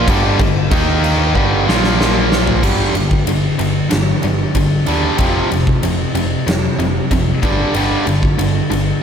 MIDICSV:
0, 0, Header, 1, 4, 480
1, 0, Start_track
1, 0, Key_signature, -2, "minor"
1, 0, Tempo, 638978
1, 58, Time_signature, 4, 2, 24, 8
1, 6782, End_track
2, 0, Start_track
2, 0, Title_t, "Distorted electric guitar"
2, 0, Program_c, 0, 30
2, 69, Note_on_c, 0, 50, 78
2, 73, Note_on_c, 0, 43, 82
2, 74, Note_on_c, 0, 55, 101
2, 295, Note_off_c, 0, 43, 0
2, 296, Note_off_c, 0, 50, 0
2, 298, Note_off_c, 0, 55, 0
2, 304, Note_on_c, 0, 43, 61
2, 306, Note_on_c, 0, 50, 66
2, 493, Note_off_c, 0, 43, 0
2, 494, Note_off_c, 0, 50, 0
2, 546, Note_on_c, 0, 51, 89
2, 546, Note_on_c, 0, 63, 99
2, 548, Note_on_c, 0, 58, 94
2, 1014, Note_off_c, 0, 51, 0
2, 1014, Note_off_c, 0, 63, 0
2, 1015, Note_off_c, 0, 58, 0
2, 1016, Note_on_c, 0, 43, 91
2, 1020, Note_on_c, 0, 50, 95
2, 1025, Note_on_c, 0, 55, 94
2, 1245, Note_off_c, 0, 50, 0
2, 1248, Note_on_c, 0, 46, 89
2, 1249, Note_off_c, 0, 43, 0
2, 1254, Note_off_c, 0, 55, 0
2, 1258, Note_on_c, 0, 53, 90
2, 1262, Note_on_c, 0, 58, 99
2, 1485, Note_off_c, 0, 46, 0
2, 1490, Note_off_c, 0, 53, 0
2, 1492, Note_off_c, 0, 58, 0
2, 1495, Note_on_c, 0, 46, 93
2, 1499, Note_on_c, 0, 53, 103
2, 1505, Note_on_c, 0, 58, 98
2, 1968, Note_off_c, 0, 46, 0
2, 1970, Note_off_c, 0, 53, 0
2, 1973, Note_off_c, 0, 58, 0
2, 1974, Note_on_c, 0, 43, 74
2, 1976, Note_on_c, 0, 50, 77
2, 1979, Note_on_c, 0, 55, 86
2, 2201, Note_off_c, 0, 43, 0
2, 2202, Note_off_c, 0, 50, 0
2, 2203, Note_off_c, 0, 55, 0
2, 2209, Note_on_c, 0, 43, 59
2, 2215, Note_on_c, 0, 50, 75
2, 2429, Note_off_c, 0, 43, 0
2, 2432, Note_off_c, 0, 50, 0
2, 2462, Note_on_c, 0, 43, 60
2, 2464, Note_on_c, 0, 50, 79
2, 2675, Note_off_c, 0, 43, 0
2, 2676, Note_off_c, 0, 50, 0
2, 2693, Note_on_c, 0, 43, 57
2, 2699, Note_on_c, 0, 50, 61
2, 2910, Note_off_c, 0, 43, 0
2, 2914, Note_off_c, 0, 50, 0
2, 2933, Note_on_c, 0, 43, 70
2, 2937, Note_on_c, 0, 50, 71
2, 3151, Note_off_c, 0, 43, 0
2, 3153, Note_off_c, 0, 50, 0
2, 3183, Note_on_c, 0, 43, 66
2, 3187, Note_on_c, 0, 50, 77
2, 3396, Note_off_c, 0, 43, 0
2, 3398, Note_off_c, 0, 50, 0
2, 3423, Note_on_c, 0, 43, 77
2, 3432, Note_on_c, 0, 50, 77
2, 3636, Note_off_c, 0, 43, 0
2, 3641, Note_off_c, 0, 50, 0
2, 3666, Note_on_c, 0, 43, 86
2, 3668, Note_on_c, 0, 55, 97
2, 3670, Note_on_c, 0, 50, 95
2, 3887, Note_off_c, 0, 43, 0
2, 3888, Note_off_c, 0, 55, 0
2, 3889, Note_off_c, 0, 50, 0
2, 3907, Note_on_c, 0, 41, 77
2, 3911, Note_on_c, 0, 53, 93
2, 3914, Note_on_c, 0, 48, 77
2, 4128, Note_off_c, 0, 41, 0
2, 4130, Note_off_c, 0, 53, 0
2, 4131, Note_off_c, 0, 48, 0
2, 4145, Note_on_c, 0, 41, 60
2, 4151, Note_on_c, 0, 48, 75
2, 4357, Note_off_c, 0, 41, 0
2, 4360, Note_off_c, 0, 48, 0
2, 4384, Note_on_c, 0, 41, 66
2, 4387, Note_on_c, 0, 48, 75
2, 4596, Note_off_c, 0, 41, 0
2, 4598, Note_off_c, 0, 48, 0
2, 4618, Note_on_c, 0, 41, 59
2, 4621, Note_on_c, 0, 48, 66
2, 4834, Note_off_c, 0, 41, 0
2, 4835, Note_off_c, 0, 48, 0
2, 4858, Note_on_c, 0, 41, 70
2, 4862, Note_on_c, 0, 48, 68
2, 5074, Note_off_c, 0, 41, 0
2, 5076, Note_off_c, 0, 48, 0
2, 5101, Note_on_c, 0, 41, 67
2, 5107, Note_on_c, 0, 48, 77
2, 5316, Note_off_c, 0, 41, 0
2, 5318, Note_off_c, 0, 48, 0
2, 5343, Note_on_c, 0, 41, 70
2, 5345, Note_on_c, 0, 48, 78
2, 5557, Note_off_c, 0, 41, 0
2, 5558, Note_off_c, 0, 48, 0
2, 5574, Note_on_c, 0, 43, 86
2, 5576, Note_on_c, 0, 50, 95
2, 5580, Note_on_c, 0, 55, 91
2, 5802, Note_off_c, 0, 43, 0
2, 5803, Note_off_c, 0, 50, 0
2, 5805, Note_off_c, 0, 55, 0
2, 5819, Note_on_c, 0, 43, 76
2, 5821, Note_on_c, 0, 50, 81
2, 5826, Note_on_c, 0, 55, 93
2, 6044, Note_off_c, 0, 43, 0
2, 6046, Note_off_c, 0, 50, 0
2, 6048, Note_off_c, 0, 55, 0
2, 6053, Note_on_c, 0, 43, 61
2, 6055, Note_on_c, 0, 50, 74
2, 6272, Note_off_c, 0, 43, 0
2, 6273, Note_off_c, 0, 50, 0
2, 6296, Note_on_c, 0, 43, 72
2, 6299, Note_on_c, 0, 50, 82
2, 6514, Note_off_c, 0, 43, 0
2, 6515, Note_off_c, 0, 50, 0
2, 6536, Note_on_c, 0, 43, 58
2, 6543, Note_on_c, 0, 50, 69
2, 6754, Note_off_c, 0, 43, 0
2, 6757, Note_off_c, 0, 50, 0
2, 6782, End_track
3, 0, Start_track
3, 0, Title_t, "Picked electric bass"
3, 0, Program_c, 1, 34
3, 62, Note_on_c, 1, 31, 88
3, 283, Note_off_c, 1, 31, 0
3, 297, Note_on_c, 1, 31, 74
3, 520, Note_off_c, 1, 31, 0
3, 542, Note_on_c, 1, 39, 80
3, 989, Note_off_c, 1, 39, 0
3, 1018, Note_on_c, 1, 31, 78
3, 1240, Note_off_c, 1, 31, 0
3, 1256, Note_on_c, 1, 34, 95
3, 1479, Note_off_c, 1, 34, 0
3, 1501, Note_on_c, 1, 34, 97
3, 1948, Note_off_c, 1, 34, 0
3, 1979, Note_on_c, 1, 31, 83
3, 2125, Note_off_c, 1, 31, 0
3, 2212, Note_on_c, 1, 31, 75
3, 2360, Note_off_c, 1, 31, 0
3, 2457, Note_on_c, 1, 31, 76
3, 2603, Note_off_c, 1, 31, 0
3, 2703, Note_on_c, 1, 31, 87
3, 2847, Note_off_c, 1, 31, 0
3, 2947, Note_on_c, 1, 31, 74
3, 3090, Note_off_c, 1, 31, 0
3, 3185, Note_on_c, 1, 31, 85
3, 3329, Note_off_c, 1, 31, 0
3, 3416, Note_on_c, 1, 31, 86
3, 3563, Note_off_c, 1, 31, 0
3, 3665, Note_on_c, 1, 39, 80
3, 3809, Note_off_c, 1, 39, 0
3, 3899, Note_on_c, 1, 29, 91
3, 4045, Note_off_c, 1, 29, 0
3, 4150, Note_on_c, 1, 29, 78
3, 4293, Note_off_c, 1, 29, 0
3, 4384, Note_on_c, 1, 29, 74
3, 4528, Note_off_c, 1, 29, 0
3, 4619, Note_on_c, 1, 29, 86
3, 4765, Note_off_c, 1, 29, 0
3, 4860, Note_on_c, 1, 29, 74
3, 5006, Note_off_c, 1, 29, 0
3, 5096, Note_on_c, 1, 29, 86
3, 5243, Note_off_c, 1, 29, 0
3, 5343, Note_on_c, 1, 29, 79
3, 5488, Note_off_c, 1, 29, 0
3, 5587, Note_on_c, 1, 31, 84
3, 5730, Note_off_c, 1, 31, 0
3, 5820, Note_on_c, 1, 31, 91
3, 5966, Note_off_c, 1, 31, 0
3, 6064, Note_on_c, 1, 31, 83
3, 6209, Note_off_c, 1, 31, 0
3, 6307, Note_on_c, 1, 31, 82
3, 6451, Note_off_c, 1, 31, 0
3, 6543, Note_on_c, 1, 31, 94
3, 6688, Note_off_c, 1, 31, 0
3, 6782, End_track
4, 0, Start_track
4, 0, Title_t, "Drums"
4, 57, Note_on_c, 9, 36, 93
4, 59, Note_on_c, 9, 49, 77
4, 133, Note_off_c, 9, 36, 0
4, 134, Note_off_c, 9, 49, 0
4, 295, Note_on_c, 9, 49, 57
4, 297, Note_on_c, 9, 36, 83
4, 370, Note_off_c, 9, 49, 0
4, 372, Note_off_c, 9, 36, 0
4, 536, Note_on_c, 9, 49, 75
4, 537, Note_on_c, 9, 36, 108
4, 611, Note_off_c, 9, 49, 0
4, 612, Note_off_c, 9, 36, 0
4, 781, Note_on_c, 9, 49, 61
4, 856, Note_off_c, 9, 49, 0
4, 1017, Note_on_c, 9, 36, 61
4, 1092, Note_off_c, 9, 36, 0
4, 1270, Note_on_c, 9, 38, 73
4, 1345, Note_off_c, 9, 38, 0
4, 1381, Note_on_c, 9, 38, 61
4, 1456, Note_off_c, 9, 38, 0
4, 1507, Note_on_c, 9, 38, 89
4, 1582, Note_off_c, 9, 38, 0
4, 1743, Note_on_c, 9, 38, 89
4, 1818, Note_off_c, 9, 38, 0
4, 1858, Note_on_c, 9, 43, 91
4, 1933, Note_off_c, 9, 43, 0
4, 1977, Note_on_c, 9, 36, 86
4, 1979, Note_on_c, 9, 57, 100
4, 2052, Note_off_c, 9, 36, 0
4, 2054, Note_off_c, 9, 57, 0
4, 2216, Note_on_c, 9, 51, 66
4, 2291, Note_off_c, 9, 51, 0
4, 2337, Note_on_c, 9, 36, 75
4, 2412, Note_off_c, 9, 36, 0
4, 2456, Note_on_c, 9, 51, 81
4, 2531, Note_off_c, 9, 51, 0
4, 2697, Note_on_c, 9, 51, 72
4, 2772, Note_off_c, 9, 51, 0
4, 2935, Note_on_c, 9, 51, 89
4, 2944, Note_on_c, 9, 38, 103
4, 3010, Note_off_c, 9, 51, 0
4, 3019, Note_off_c, 9, 38, 0
4, 3176, Note_on_c, 9, 51, 65
4, 3251, Note_off_c, 9, 51, 0
4, 3416, Note_on_c, 9, 51, 86
4, 3417, Note_on_c, 9, 36, 70
4, 3492, Note_off_c, 9, 36, 0
4, 3492, Note_off_c, 9, 51, 0
4, 3654, Note_on_c, 9, 51, 62
4, 3729, Note_off_c, 9, 51, 0
4, 3894, Note_on_c, 9, 51, 82
4, 3898, Note_on_c, 9, 36, 92
4, 3969, Note_off_c, 9, 51, 0
4, 3973, Note_off_c, 9, 36, 0
4, 4143, Note_on_c, 9, 51, 64
4, 4219, Note_off_c, 9, 51, 0
4, 4260, Note_on_c, 9, 36, 82
4, 4335, Note_off_c, 9, 36, 0
4, 4379, Note_on_c, 9, 51, 81
4, 4455, Note_off_c, 9, 51, 0
4, 4621, Note_on_c, 9, 51, 70
4, 4696, Note_off_c, 9, 51, 0
4, 4866, Note_on_c, 9, 51, 75
4, 4875, Note_on_c, 9, 38, 105
4, 4941, Note_off_c, 9, 51, 0
4, 4950, Note_off_c, 9, 38, 0
4, 5106, Note_on_c, 9, 51, 62
4, 5181, Note_off_c, 9, 51, 0
4, 5341, Note_on_c, 9, 36, 68
4, 5341, Note_on_c, 9, 51, 80
4, 5416, Note_off_c, 9, 36, 0
4, 5416, Note_off_c, 9, 51, 0
4, 5580, Note_on_c, 9, 36, 93
4, 5581, Note_on_c, 9, 51, 64
4, 5655, Note_off_c, 9, 36, 0
4, 5656, Note_off_c, 9, 51, 0
4, 5817, Note_on_c, 9, 51, 75
4, 5893, Note_off_c, 9, 51, 0
4, 6060, Note_on_c, 9, 51, 61
4, 6135, Note_off_c, 9, 51, 0
4, 6181, Note_on_c, 9, 36, 71
4, 6256, Note_off_c, 9, 36, 0
4, 6302, Note_on_c, 9, 51, 81
4, 6377, Note_off_c, 9, 51, 0
4, 6546, Note_on_c, 9, 51, 69
4, 6622, Note_off_c, 9, 51, 0
4, 6782, End_track
0, 0, End_of_file